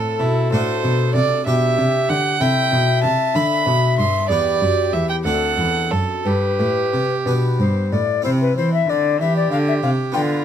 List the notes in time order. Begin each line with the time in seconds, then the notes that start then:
Already playing: A2 A3 C4 E4 A4
0.20 B2 E4
0.52 A2 A3 D4 F#4 C5
0.84 B2
1.14 C3 D5
1.46 B2 D4 G4 E5
1.78 C3
2.09 D3 F#5
2.40 C3 E4 A4 E5 G5
2.71 B2
3.02 C3 A5
3.35 D3 D4 A4 B5
3.66 B2
3.98 G2 C6
4.29 E2 B3 G4 G#4 D5
4.61 F#2
4.93 E2 E5
5.09 G5
5.25 D2 A3 C4 D4 A4 F#5
5.58 E2
5.91 F#2 A4
6.25 G2 G4 B4
6.59 A2
6.93 C3
7.25 B2 B3 D4 B4
7.59 G2 C5
7.93 A2 D5
8.22 C3 C4 E4 C5
8.26 C3
8.42 B4
8.57 E3 C5
8.74 E5
8.89 D3 D5
9.20 E3 G4 E5
9.36 D5
9.52 D3 F5
9.68 E5
9.83 C3 F5
10.12 D3 B3 F4 G5